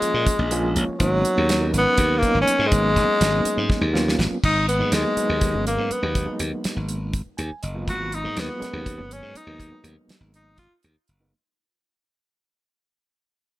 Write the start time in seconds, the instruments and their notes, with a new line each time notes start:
Already playing: reed electric piano F3 G#3 A#3 C#4 F4, tenor saxophone G#3
0.02 closed hi-hat
0.14 slap bass A#2
0.27 muted slap bass stroke, kick, closed hi-hat
0.39 slap bass A#1
0.51 reed electric piano F3 G#3 A#3 C#4 F4 G#5, closed hi-hat
0.76 slap bass A#1, reed electric piano C#5, closed hi-hat
0.89 muted slap bass stroke
0.99 slap bass G#1, tenor saxophone F#3, reed electric piano F#3 A#3 B3 C#4 D#4, kick, closed hi-hat
1.25 closed hi-hat
1.38 slap bass D#2
1.49 snare, closed hi-hat
1.61 reed electric piano F#3 B3 C#4 D#4 A#4
1.73 slap bass G#1, closed hi-hat
1.78 tenor saxophone B3
1.98 slap bass D#2, kick, closed hi-hat
2.18 reed electric piano F#3 B3, tenor saxophone A#3
2.22 reed electric piano A#3 C#4 D#4, kick, closed hi-hat
2.35 slap bass G#1
2.41 tenor saxophone C#4
2.48 closed hi-hat
2.59 slap bass G#2
2.67 tenor saxophone G#3
2.71 slap bass G#1, reed electric piano F#3 A#3 B3 C#4 D#4, kick, closed hi-hat
2.96 slap bass G#1, kick, snare, closed hi-hat
3.21 slap bass G#1, snare, closed hi-hat
3.32 reed electric piano F#3 A#3 B3 C#4 D#4
3.45 closed hi-hat
3.57 slap bass G#2
3.70 muted slap bass stroke, kick, snare
3.81 slap bass D#2
3.93 reed electric piano F#3 A#3 B3 C#4 F4, snare
4.08 snare
4.18 slap bass G#1, snare
4.44 slap bass G#1, tenor saxophone D#4, kick, crash
4.68 tenor saxophone B3, closed hi-hat
4.79 slap bass G#2, reed electric piano F#3 G#3 A#3 B3 D#4
4.92 slap bass D#2, tenor saxophone G#3, snare, closed hi-hat
5.05 reed electric piano F#3 G#3 A#3 B3 D#4
5.17 reed electric piano F#3 G#3 A#3 B3 D#4, muted slap bass stroke, closed hi-hat
5.29 slap bass D#2
5.41 kick, closed hi-hat
5.53 slap bass G#1, reed electric piano F#3 G#3 A#3 B3 C#4
5.67 tenor saxophone A#3, closed hi-hat
5.78 slap bass G#2
5.91 tenor saxophone B3, muted slap bass stroke, closed hi-hat
6.03 slap bass D#2, reed electric piano F#3 G#3 A#3 B3 D#4
6.15 kick, closed hi-hat
6.26 reed electric piano F#3 G#3 A#3 B3 D#4, muted slap bass stroke
6.39 slap bass D#2, closed hi-hat
6.64 muted slap bass stroke, snare, closed hi-hat
6.76 slap bass G#1
6.89 closed hi-hat
7.13 kick, closed hi-hat
7.37 slap bass D#2, reed electric piano G#5, closed hi-hat
7.51 muted slap bass stroke
7.63 slap bass F#1, reed electric piano D#5, closed hi-hat
7.75 reed electric piano F#3 G#3 A#3 B3 F4
7.88 slap bass G#1, tenor saxophone F#4, kick, closed hi-hat
8.12 tenor saxophone D#4, closed hi-hat
8.24 slap bass G#2, reed electric piano F#3 G#3 A#3 B3 D#4
8.37 slap bass D#2, tenor saxophone B3, snare, closed hi-hat
8.48 reed electric piano F#3 G#3 A#3 B3 F4
8.60 reed electric piano F#3 G#3 B3 C#4 A#4, muted slap bass stroke, snare, closed hi-hat
8.73 slap bass D#2
8.86 kick, closed hi-hat
8.98 slap bass G#1, reed electric piano F#3 G#3 A#3 B3 C#4
9.11 tenor saxophone C#4, closed hi-hat
9.22 slap bass G#2
9.35 tenor saxophone D#4, muted slap bass stroke, closed hi-hat
9.47 slap bass D#2, reed electric piano F#3 G#3 A#3 B3 D#4
9.60 kick, closed hi-hat
9.71 reed electric piano F#3 G#3 A#3 B3 D#4, muted slap bass stroke
9.84 slap bass D#2, closed hi-hat
10.08 muted slap bass stroke, snare, closed hi-hat
10.20 slap bass G#1
10.34 tenor saxophone D#4, closed hi-hat
10.58 tenor saxophone F4, kick, snare, closed hi-hat
10.83 slap bass D#2, closed hi-hat
10.96 muted slap bass stroke
11.08 slap bass F#1, closed hi-hat
11.20 reed electric piano F#3 G#3 A#3 B3 D#4